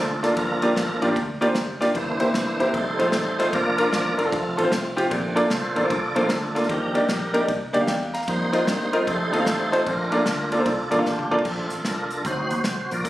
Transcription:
Already playing: fingered electric bass D2
0.00 tonewheel organ D4 F4 A4
0.23 grand piano A#3 D4 F4 A4 D5, snare, ride
0.31 tonewheel organ A#4
0.37 fingered electric bass G1, grand piano G2, tonewheel organ F3 A#3 D4 F4 A4 A#4, kick, ride
0.62 grand piano A#3 D4 F4 G4 D5, ride
0.76 fingered electric bass A1, snare, ride
1.02 fingered electric bass A#1, grand piano A#3 D4 F4 G4 D5, ride
1.09 grand piano A#3 D4 F4 G4 D5
1.16 fingered electric bass D2, kick, ride
1.41 fingered electric bass D#2, grand piano A#3 D4 F4 G4 D5, ride
1.47 grand piano A#3 D4 F4 G4 C5
1.55 fingered electric bass F#1, snare, ride
1.80 grand piano A#3 D4 F4 G4 D5, snare, ride
1.94 fingered electric bass G1, grand piano G2, tonewheel organ E3 A#3 D4 E4 C5, kick, ride
2.20 grand piano A#3 C4 E4 G4 C5, ride
2.34 fingered electric bass F1, snare, ride
2.60 fingered electric bass E1, grand piano A#3 C4 E4 G4 C5, ride
2.67 grand piano A#3 C4 E4 G4 A#4
2.73 fingered electric bass F1, tonewheel organ G3 A3 D#4 A4 C5, kick, ride
2.99 fingered electric bass A#1, grand piano A3 C4 D#4 F4 C5, ride
3.06 grand piano A3 C4 D#4 F4 C5
3.12 fingered electric bass A1, snare, ride
3.39 grand piano A3 C4 D#4 F4 C5, snare, ride
3.53 fingered electric bass F1, tonewheel organ F3 A#3 D4 F4 A#4 D5, kick, ride
3.78 grand piano D4 F4 A#4, ride
3.93 fingered electric bass A1, snare, ride
4.18 fingered electric bass G1, tonewheel organ C4 F4 A4, grand piano D4 F4 A#4, ride
4.24 grand piano D4 F4 A4
4.31 fingered electric bass F1, tonewheel organ F3 A3 C4, kick, ride
4.57 fingered electric bass A1, grand piano C4 F4 A4, ride
4.64 grand piano C4 F4 C5
4.72 fingered electric bass C2, snare, ride
4.96 grand piano C4 F4 G4, ride
5.10 fingered electric bass A#1, grand piano A#2, tonewheel organ D3 A3 C4, kick, ride
5.36 grand piano A#3 D4 F4 A4 D5, ride
5.50 fingered electric bass C2, tonewheel organ F4 A4 C5, snare, ride
5.76 fingered electric bass A1, grand piano A#3 D4 F4 A4 D5, ride
5.83 grand piano A#3 D4 F4 A4 C5, tonewheel organ F4 A4 D5
5.90 fingered electric bass C2, kick, ride
6.15 fingered electric bass A#1, tonewheel organ D3 A3 C4, grand piano A#3 D4 F4 A4 C5, ride
6.23 grand piano A#3 D4 F4 A4 C5, tonewheel organ A#4
6.29 fingered electric bass D2, tonewheel organ D4 F4 A4, snare, ride
6.55 grand piano A#3 D4 F4 A4 D5, snare, ride
6.63 tonewheel organ A#4, snare
6.69 fingered electric bass D#2, grand piano D#3, tonewheel organ F3 G3 D4 G4 A#4, kick, ride
6.94 grand piano A#3 D4 D#4 G4 D5, ride
7.09 fingered electric bass A#1, snare, ride
7.33 grand piano A#3 D4 D#4 G4 A#4, ride
7.41 grand piano A#3 D4 D#4 G4 D5
7.48 fingered electric bass C2, kick, ride
7.73 fingered electric bass D2, grand piano A#3 D4 D#4 G4 D5, ride
7.81 grand piano A#3 D4 D#4 G4 F5
7.87 fingered electric bass E2, grand piano D5 G5, snare, ride
8.14 grand piano F5 A#5, snare, ride
8.22 snare
8.28 fingered electric bass F2, tonewheel organ G3 A#3 D#4 C5, kick, ride
8.53 grand piano C4 D#4 F4 A#4 D#5, ride
8.67 fingered electric bass G2, snare, ride
8.93 grand piano C4 D#4 F4 A#4 D#5, ride
9.00 grand piano C4 D#4 F4 A#4 D#5
9.06 fingered electric bass F2, tonewheel organ G3 A3 D#4 A4 C5, kick, ride
9.32 fingered electric bass D#2, grand piano C4 D#4 F4 A4 D#5, ride
9.39 grand piano C4 D#4 F4 A4 F5
9.46 fingered electric bass A1, snare, ride
9.72 grand piano C4 D#4 F4 A4 C5, ride
9.86 fingered electric bass A#1, grand piano A#2, tonewheel organ A3 C4 D4 F4 A#4, kick, ride
10.12 grand piano A#3 D4 F4 A4 D5, ride
10.26 fingered electric bass D2, snare, ride
10.52 grand piano A#3 D4 F4 A4 D5, tonewheel organ D4 F4 A4, ride
10.58 grand piano A#3 D4 F4 A4 C5
10.66 fingered electric bass C2, kick, ride
10.91 fingered electric bass A1, grand piano A#3 D4 F4 A4 D5, ride
10.98 grand piano A#3 D4 F4 A4 F5
11.05 fingered electric bass A1, tonewheel organ D4 G4, grand piano A5, snare
11.19 high tom
11.31 grand piano A#3 D4 F4 A4 D5, mid tom
11.39 tonewheel organ G4, floor tom
11.45 fingered electric bass A#1, tonewheel organ A3 C4 D4 F4 A4, kick, crash
11.70 fingered electric bass A1, closed hi-hat
11.85 fingered electric bass C2, tonewheel organ D4 F4 A#4, snare, closed hi-hat
12.11 closed hi-hat
12.24 fingered electric bass D2, tonewheel organ F#3 C4 D#4 F#4 C5, kick, closed hi-hat
12.51 fingered electric bass D#2, closed hi-hat
12.64 fingered electric bass C2, snare, closed hi-hat
12.91 fingered electric bass A#1, tonewheel organ F4 A#4 D5, closed hi-hat
13.04 fingered electric bass G1, tonewheel organ A#3 F4 A4, kick, closed hi-hat

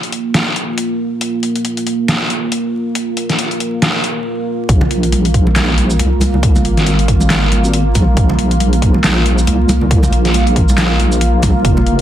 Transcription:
Already playing: ambient pad A#3 F4
0.03 closed hi-hat
0.12 closed hi-hat
0.34 snare, closed hi-hat
0.56 closed hi-hat
0.78 closed hi-hat
1.21 closed hi-hat
1.43 closed hi-hat
1.56 closed hi-hat
1.65 closed hi-hat
1.77 closed hi-hat
1.87 closed hi-hat
2.08 snare, closed hi-hat
2.30 closed hi-hat
2.52 closed hi-hat
2.95 closed hi-hat
3.17 closed hi-hat
3.30 snare, closed hi-hat
3.39 closed hi-hat
3.51 closed hi-hat
3.60 closed hi-hat
3.82 snare, closed hi-hat
4.04 closed hi-hat
4.69 wobble bass A#1, ambient pad A#3 F4, kick, closed hi-hat
4.81 muted conga, high conga, low conga
4.91 closed hi-hat
5.03 closed hi-hat
5.12 closed hi-hat, high conga
5.25 closed hi-hat
5.34 kick, closed hi-hat
5.47 high conga
5.56 snare, clap, closed hi-hat
5.78 closed hi-hat, high conga
5.90 shaker
5.99 wobble bass C2, closed hi-hat, muted conga
6.21 open hi-hat, muted conga, high conga, shaker
6.34 low conga
6.43 kick, closed hi-hat
6.56 high conga, low conga, shaker
6.65 wobble bass G#1, closed hi-hat
6.77 snare, closed hi-hat
6.87 closed hi-hat, high conga
6.99 closed hi-hat
7.08 kick, closed hi-hat
7.20 high conga, shaker
7.30 snare, clap, closed hi-hat
7.52 closed hi-hat, high conga
7.64 shaker
7.73 closed hi-hat
7.95 wobble bass A#1, kick, open hi-hat, muted conga, high conga, shaker
8.17 wobble bass A#1, kick, closed hi-hat
8.29 muted conga, high conga, low conga
8.39 closed hi-hat
8.51 closed hi-hat
8.60 closed hi-hat, high conga
8.73 closed hi-hat
8.82 kick, closed hi-hat
8.94 high conga
9.04 snare, clap, closed hi-hat
9.25 closed hi-hat, high conga
9.38 shaker
9.47 wobble bass C2, closed hi-hat, muted conga
9.69 open hi-hat, muted conga, high conga, shaker
9.81 low conga
9.91 kick, closed hi-hat
10.03 muted conga, high conga, low conga, shaker
10.13 wobble bass A#1, closed hi-hat
10.25 snare, closed hi-hat
10.34 closed hi-hat, high conga
10.47 closed hi-hat
10.56 kick, closed hi-hat
10.69 high conga, shaker
10.78 snare, clap, closed hi-hat
11.00 closed hi-hat, high conga
11.12 shaker
11.21 closed hi-hat
11.42 wobble bass A#1, kick, open hi-hat, muted conga, high conga, shaker
11.65 wobble bass F1, kick, closed hi-hat
11.77 muted conga, high conga, low conga
11.87 closed hi-hat

